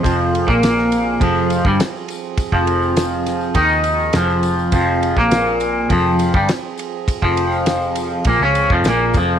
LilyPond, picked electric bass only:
\new Staff \with { instrumentName = "Picked electric bass" } { \clef bass \time 4/4 \key f \minor \tempo 4 = 102 f,,8. bes,,4~ bes,,16 f,,8. g,,16 r4 | r16 f,,4.~ f,,16 ees,4 f,,4 | f,,8. bes,,4~ bes,,16 f,,8. g,,16 r4 | r16 f,,4.~ f,,16 bes,,16 des,8 f,,16 bes,,8 f,,8 | }